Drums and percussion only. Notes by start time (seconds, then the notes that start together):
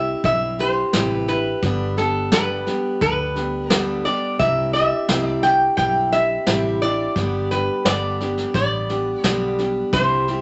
0.24 kick, snare
0.59 snare
0.93 snare, hi-hat pedal
1.28 snare
1.62 kick, snare
1.97 snare
2.32 snare, hi-hat pedal
2.67 snare
3.01 kick, snare
3.36 snare
3.70 snare, hi-hat pedal
4.05 snare
4.39 kick, snare
4.74 snare
5.08 snare, hi-hat pedal
5.43 snare
5.78 kick, snare
6.12 snare
6.47 snare, hi-hat pedal
6.82 snare
7.16 kick, snare
7.51 snare
7.85 snare, hi-hat pedal
8.20 snare
8.37 snare
8.54 kick, snare
8.89 snare
9.24 snare, hi-hat pedal
9.58 snare
9.93 kick, snare
10.28 snare